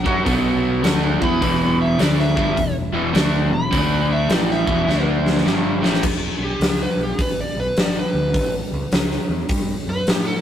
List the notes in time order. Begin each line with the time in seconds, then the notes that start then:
Already playing: F#5
0.04 F#2 F#3 C#4 F#4, kick
0.25 B1 B2 F#3 B3, kick, open hi-hat
0.82 D2 D3 A3 D4, snare, open hi-hat
1.20 E2 E3 B3 E4 B5, kick
1.41 E1 E2 B2 E3, kick, open hi-hat
1.82 E5
1.99 D2 D3 A3 D4 D5, snare, open hi-hat
2.19 E5, snare
2.36 G1 G2 D3 G3, kick
2.56 E1 E2 B2, kick, open hi-hat
2.93 E1 E2 B2 E3
3.13 D2 D3 A3 D4, snare, open hi-hat
3.50 E1 E2 B2 B5
3.71 D2 D3 A3 D4, kick, open hi-hat
4.12 E5
4.28 A1 A2 E3 A3, snare, open hi-hat
4.32 D5
4.50 E5, snare
4.67 E1 E2 B2 E3, kick
4.87 D2 D3 A3 D4, snare
5.26 snare
5.37 snare
5.45 G1 G2 D3 G3, snare
5.81 A1 A2 E3 A3, snare
5.94 snare
6.03 E1, kick, crash
6.39 B1
6.44 G4
6.60 C#2, snare, open hi-hat
6.83 B4
6.97 B1
7.03 G4
7.18 G#1 B4, kick, open hi-hat
7.41 D5
7.56 B1 B4
7.76 G#1 D5, snare, open hi-hat
7.99 B4
8.13 D2
8.34 A1, kick, open hi-hat
8.72 C#2
8.92 C#2, snare, open hi-hat
9.11 snare
9.29 E2
9.49 G2, kick, open hi-hat
9.87 F#2 B4
10.07 A2 G4, snare, open hi-hat
10.27 A4